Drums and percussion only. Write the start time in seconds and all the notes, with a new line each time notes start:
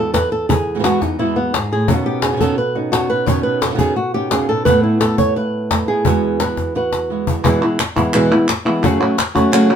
0.14 cajon bass, cajon slap
0.50 cajon bass
0.84 cajon slap
1.02 cajon bass, cajon slap
1.54 cajon slap
1.88 cajon bass
2.22 cajon slap
2.40 cajon bass
2.93 cajon slap
3.27 cajon bass
3.62 cajon slap
3.79 cajon bass
4.31 cajon slap
4.66 cajon bass
5.01 cajon slap
5.18 cajon bass
5.71 cajon bass, cajon slap
6.05 cajon bass
6.40 cajon slap
6.57 cajon bass, cajon slap
6.93 cajon slap
7.27 cajon bass
7.45 cajon bass
7.79 cajon slap, clap
7.97 cajon bass
8.14 clap
8.48 cajon slap, clap
8.84 cajon bass
9.18 cajon slap, clap
9.36 cajon bass
9.54 clap